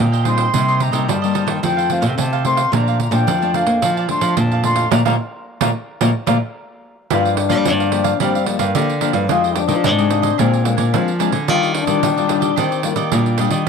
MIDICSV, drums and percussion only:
0, 0, Header, 1, 2, 480
1, 0, Start_track
1, 0, Key_signature, -2, "major"
1, 0, Tempo, 546946
1, 477, Time_signature, 4, 2, 24, 8
1, 12012, End_track
2, 0, Start_track
2, 0, Title_t, "Pandeiro"
2, 118, Note_on_c, 9, 54, 33
2, 206, Note_off_c, 9, 54, 0
2, 221, Note_on_c, 9, 54, 56
2, 309, Note_off_c, 9, 54, 0
2, 331, Note_on_c, 9, 54, 64
2, 419, Note_off_c, 9, 54, 0
2, 471, Note_on_c, 9, 54, 85
2, 559, Note_off_c, 9, 54, 0
2, 601, Note_on_c, 9, 54, 32
2, 689, Note_off_c, 9, 54, 0
2, 705, Note_on_c, 9, 54, 59
2, 793, Note_off_c, 9, 54, 0
2, 817, Note_on_c, 9, 54, 63
2, 905, Note_off_c, 9, 54, 0
2, 958, Note_on_c, 9, 54, 81
2, 1046, Note_off_c, 9, 54, 0
2, 1086, Note_on_c, 9, 54, 35
2, 1174, Note_off_c, 9, 54, 0
2, 1186, Note_on_c, 9, 54, 62
2, 1273, Note_off_c, 9, 54, 0
2, 1296, Note_on_c, 9, 54, 72
2, 1383, Note_off_c, 9, 54, 0
2, 1435, Note_on_c, 9, 54, 72
2, 1522, Note_off_c, 9, 54, 0
2, 1567, Note_on_c, 9, 54, 34
2, 1655, Note_off_c, 9, 54, 0
2, 1665, Note_on_c, 9, 54, 56
2, 1753, Note_off_c, 9, 54, 0
2, 1776, Note_on_c, 9, 54, 64
2, 1864, Note_off_c, 9, 54, 0
2, 1916, Note_on_c, 9, 54, 77
2, 2004, Note_off_c, 9, 54, 0
2, 2043, Note_on_c, 9, 54, 32
2, 2131, Note_off_c, 9, 54, 0
2, 2147, Note_on_c, 9, 54, 55
2, 2235, Note_off_c, 9, 54, 0
2, 2259, Note_on_c, 9, 54, 61
2, 2346, Note_off_c, 9, 54, 0
2, 2397, Note_on_c, 9, 54, 80
2, 2484, Note_off_c, 9, 54, 0
2, 2526, Note_on_c, 9, 54, 33
2, 2613, Note_off_c, 9, 54, 0
2, 2630, Note_on_c, 9, 54, 59
2, 2718, Note_off_c, 9, 54, 0
2, 2737, Note_on_c, 9, 54, 64
2, 2825, Note_off_c, 9, 54, 0
2, 2876, Note_on_c, 9, 54, 86
2, 2964, Note_off_c, 9, 54, 0
2, 3006, Note_on_c, 9, 54, 34
2, 3094, Note_off_c, 9, 54, 0
2, 3109, Note_on_c, 9, 54, 57
2, 3196, Note_off_c, 9, 54, 0
2, 3218, Note_on_c, 9, 54, 67
2, 3305, Note_off_c, 9, 54, 0
2, 3356, Note_on_c, 9, 54, 76
2, 3443, Note_off_c, 9, 54, 0
2, 3486, Note_on_c, 9, 54, 36
2, 3574, Note_off_c, 9, 54, 0
2, 3587, Note_on_c, 9, 54, 55
2, 3674, Note_off_c, 9, 54, 0
2, 3697, Note_on_c, 9, 54, 64
2, 3785, Note_off_c, 9, 54, 0
2, 3833, Note_on_c, 9, 54, 80
2, 3921, Note_off_c, 9, 54, 0
2, 3964, Note_on_c, 9, 54, 31
2, 4051, Note_off_c, 9, 54, 0
2, 4068, Note_on_c, 9, 54, 58
2, 4156, Note_off_c, 9, 54, 0
2, 4175, Note_on_c, 9, 54, 65
2, 4263, Note_off_c, 9, 54, 0
2, 4314, Note_on_c, 9, 54, 99
2, 4401, Note_off_c, 9, 54, 0
2, 4437, Note_on_c, 9, 54, 92
2, 4525, Note_off_c, 9, 54, 0
2, 4921, Note_on_c, 9, 54, 98
2, 5009, Note_off_c, 9, 54, 0
2, 5272, Note_on_c, 9, 54, 91
2, 5360, Note_off_c, 9, 54, 0
2, 5503, Note_on_c, 9, 54, 91
2, 5591, Note_off_c, 9, 54, 0
2, 6235, Note_on_c, 9, 54, 86
2, 6323, Note_off_c, 9, 54, 0
2, 6367, Note_on_c, 9, 54, 34
2, 6454, Note_off_c, 9, 54, 0
2, 6468, Note_on_c, 9, 54, 68
2, 6556, Note_off_c, 9, 54, 0
2, 6579, Note_on_c, 9, 54, 58
2, 6667, Note_off_c, 9, 54, 0
2, 6717, Note_on_c, 9, 54, 86
2, 6805, Note_off_c, 9, 54, 0
2, 6847, Note_on_c, 9, 54, 35
2, 6935, Note_off_c, 9, 54, 0
2, 6950, Note_on_c, 9, 54, 65
2, 7038, Note_off_c, 9, 54, 0
2, 7060, Note_on_c, 9, 54, 62
2, 7147, Note_off_c, 9, 54, 0
2, 7197, Note_on_c, 9, 54, 77
2, 7285, Note_off_c, 9, 54, 0
2, 7330, Note_on_c, 9, 54, 37
2, 7418, Note_off_c, 9, 54, 0
2, 7429, Note_on_c, 9, 54, 67
2, 7516, Note_off_c, 9, 54, 0
2, 7540, Note_on_c, 9, 54, 59
2, 7627, Note_off_c, 9, 54, 0
2, 7677, Note_on_c, 9, 54, 81
2, 7765, Note_off_c, 9, 54, 0
2, 7807, Note_on_c, 9, 54, 35
2, 7895, Note_off_c, 9, 54, 0
2, 7908, Note_on_c, 9, 54, 65
2, 7995, Note_off_c, 9, 54, 0
2, 8016, Note_on_c, 9, 54, 56
2, 8103, Note_off_c, 9, 54, 0
2, 8154, Note_on_c, 9, 54, 89
2, 8242, Note_off_c, 9, 54, 0
2, 8285, Note_on_c, 9, 54, 32
2, 8373, Note_off_c, 9, 54, 0
2, 8386, Note_on_c, 9, 54, 67
2, 8474, Note_off_c, 9, 54, 0
2, 8500, Note_on_c, 9, 54, 55
2, 8588, Note_off_c, 9, 54, 0
2, 8636, Note_on_c, 9, 54, 86
2, 8724, Note_off_c, 9, 54, 0
2, 8764, Note_on_c, 9, 54, 36
2, 8852, Note_off_c, 9, 54, 0
2, 8868, Note_on_c, 9, 54, 72
2, 8956, Note_off_c, 9, 54, 0
2, 8980, Note_on_c, 9, 54, 60
2, 9068, Note_off_c, 9, 54, 0
2, 9119, Note_on_c, 9, 54, 76
2, 9207, Note_off_c, 9, 54, 0
2, 9246, Note_on_c, 9, 54, 33
2, 9333, Note_off_c, 9, 54, 0
2, 9349, Note_on_c, 9, 54, 65
2, 9437, Note_off_c, 9, 54, 0
2, 9459, Note_on_c, 9, 54, 59
2, 9547, Note_off_c, 9, 54, 0
2, 9599, Note_on_c, 9, 54, 88
2, 9687, Note_off_c, 9, 54, 0
2, 9724, Note_on_c, 9, 54, 34
2, 9812, Note_off_c, 9, 54, 0
2, 9829, Note_on_c, 9, 54, 66
2, 9916, Note_off_c, 9, 54, 0
2, 9938, Note_on_c, 9, 54, 54
2, 10026, Note_off_c, 9, 54, 0
2, 10077, Note_on_c, 9, 54, 84
2, 10165, Note_off_c, 9, 54, 0
2, 10206, Note_on_c, 9, 54, 33
2, 10294, Note_off_c, 9, 54, 0
2, 10308, Note_on_c, 9, 54, 68
2, 10395, Note_off_c, 9, 54, 0
2, 10419, Note_on_c, 9, 54, 61
2, 10507, Note_off_c, 9, 54, 0
2, 10557, Note_on_c, 9, 54, 87
2, 10645, Note_off_c, 9, 54, 0
2, 10686, Note_on_c, 9, 54, 37
2, 10774, Note_off_c, 9, 54, 0
2, 10788, Note_on_c, 9, 54, 73
2, 10876, Note_off_c, 9, 54, 0
2, 10900, Note_on_c, 9, 54, 60
2, 10987, Note_off_c, 9, 54, 0
2, 11036, Note_on_c, 9, 54, 77
2, 11123, Note_off_c, 9, 54, 0
2, 11163, Note_on_c, 9, 54, 35
2, 11251, Note_off_c, 9, 54, 0
2, 11261, Note_on_c, 9, 54, 65
2, 11349, Note_off_c, 9, 54, 0
2, 11373, Note_on_c, 9, 54, 61
2, 11460, Note_off_c, 9, 54, 0
2, 11511, Note_on_c, 9, 54, 84
2, 11599, Note_off_c, 9, 54, 0
2, 11638, Note_on_c, 9, 54, 33
2, 11725, Note_off_c, 9, 54, 0
2, 11740, Note_on_c, 9, 54, 70
2, 11827, Note_off_c, 9, 54, 0
2, 11852, Note_on_c, 9, 54, 59
2, 11940, Note_off_c, 9, 54, 0
2, 12012, End_track
0, 0, End_of_file